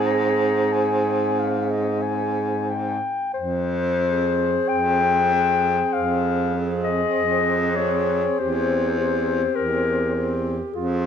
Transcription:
0.00 2.98 G#2 soft
0.00 2.98 C4 soft
0.00 2.72 G#4 medium
0.06 0.74 A#5 soft
0.73 1.40 G#5 soft
1.39 1.73 F5 soft
1.71 2.04 D#5 soft
2.02 2.71 G#5 medium
2.70 3.34 G5 soft
3.34 4.56 F2 medium
3.34 4.70 C5 medium
4.02 5.31 C4 soft
4.02 5.31 G#4 soft
4.69 5.80 F2 medium
4.69 5.95 G5 medium
5.33 6.52 C4 soft
5.33 6.53 G#4 soft
5.93 7.02 F2 medium
5.93 6.67 F5 medium
6.55 7.75 C4 soft
6.55 7.76 G#4 soft
6.84 7.78 D#5 medium
7.16 8.25 F2 medium
7.77 8.38 C4 soft
7.77 8.38 G#4 soft
7.77 8.40 C#5 medium
8.39 9.43 E2 medium
8.39 8.97 C4 soft
8.39 8.97 G4 soft
8.39 9.57 C5 medium
8.99 10.12 C4 soft
8.99 10.12 G4 soft
9.55 10.59 E2 medium
9.55 10.45 A#4 medium
10.14 10.56 C4 soft
10.14 10.71 G4 soft
10.72 11.06 F2 medium
10.72 11.06 C4 soft
10.72 11.06 F4 soft
10.72 11.06 G#4 medium

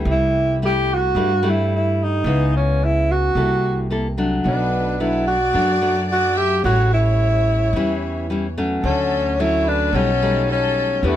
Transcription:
0.00 0.57 G3 medium
0.00 0.57 A3 medium
0.00 0.57 E4 medium
0.05 1.11 C2 loud
0.05 1.13 C3 medium
0.11 0.59 E4 loud
0.62 1.12 G3 medium
0.62 1.12 A3 medium
0.62 1.12 E4 medium
0.62 0.95 G4 loud
0.94 1.51 F#4 loud
1.15 2.21 G2 medium
1.15 2.23 G2 medium
1.15 1.32 G3 medium
1.15 1.32 A3 medium
1.15 1.33 E4 medium
1.43 2.21 G3 medium
1.43 2.21 A3 medium
1.43 2.21 E4 medium
1.49 1.73 E4 medium
1.75 2.04 E4 medium
2.03 2.55 D#4 medium
2.24 3.30 C#2 loud
2.24 3.33 C#3 medium
2.24 3.31 G#3 medium
2.24 3.31 B3 soft
2.24 3.31 E4 medium
2.56 2.86 C#4 medium
2.84 3.13 E4 medium
3.11 3.92 F#4 medium
3.35 4.41 C2 medium
3.35 4.43 C3 soft
3.35 3.86 A#3 soft
3.35 3.86 E4 medium
3.35 3.86 A4 medium
3.90 4.06 A#3 medium
3.90 4.07 E4 medium
3.90 4.07 A4 medium
4.18 4.95 F#3 medium
4.18 4.95 A3 medium
4.18 4.96 D4 medium
4.44 5.51 B1 loud
4.44 5.51 B2 medium
4.44 5.01 D4 medium
4.44 4.96 B4 medium
4.98 5.35 F#3 medium
4.98 5.35 A3 medium
4.98 5.35 D4 medium
4.98 5.27 E4 medium
4.98 5.26 B4 medium
5.26 6.05 F#4 loud
5.26 6.05 D5 medium
5.54 6.61 F#2 medium
5.54 6.60 F#2 medium
5.54 5.77 F#3 soft
5.54 5.77 A3 medium
5.54 5.78 D4 medium
5.82 6.60 F#3 medium
5.82 6.60 A3 medium
5.82 6.60 D4 medium
6.09 6.39 F#4 loud
6.09 6.34 D5 medium
6.35 6.64 G4 loud
6.35 6.63 E5 medium
6.63 7.70 A1 loud
6.63 7.72 A2 medium
6.63 7.70 G3 medium
6.63 7.70 C#4 medium
6.63 7.71 E4 medium
6.63 6.90 F#4 loud
6.63 6.89 C#5 medium
6.91 8.53 E4 loud
6.91 8.52 C#5 medium
7.73 8.79 E2 loud
7.73 8.82 E3 medium
7.73 8.25 G3 medium
7.73 8.25 C#4 medium
7.73 8.26 E4 medium
8.30 8.45 G3 medium
8.30 8.46 C#4 medium
8.30 8.46 E4 medium
8.58 9.35 F#3 medium
8.58 9.35 A3 medium
8.58 9.35 C#4 medium
8.83 9.89 D2 loud
8.83 9.91 D3 medium
8.83 9.42 C#4 loud
8.83 9.34 A4 medium
9.38 9.90 F#3 medium
9.38 9.90 A3 medium
9.38 9.90 C#4 medium
9.38 9.69 E4 loud
9.38 9.66 C#5 medium
9.64 9.97 D4 loud
9.64 9.92 B4 medium
9.93 10.99 B1 loud
9.93 11.01 B2 medium
9.93 10.10 G3 medium
9.93 10.10 A3 medium
9.93 10.49 C#4 loud
9.93 10.11 D#4 medium
9.93 10.46 A4 medium
10.22 10.99 G3 medium
10.22 11.00 A3 medium
10.22 11.00 D#4 medium
10.47 10.98 A4 medium
10.52 11.08 C#4 medium
11.03 11.16 E2 loud
11.03 11.16 E3 medium
11.03 11.16 B3 medium
11.03 11.16 D4 medium
11.03 11.16 E4 medium
11.03 11.16 G4 medium
11.07 11.16 A3 loud

